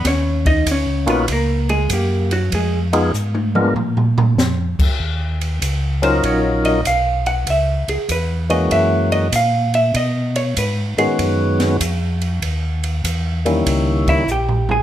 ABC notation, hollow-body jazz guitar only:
X:1
M:4/4
L:1/8
Q:"Swing" 1/4=97
K:Ebm
V:1 name="Hollow-body jazz guitar"
[Dd] [Ee] [Dd] [Cc] [B,B] [A,A] [B,=G] [_G,_G] | [A,A] z6 z | z3 =c d e f g | _f A c e f e =f _f |
^d _d =B ^G4- G | z4 z [_F_f] [=G=g] [Aa] |]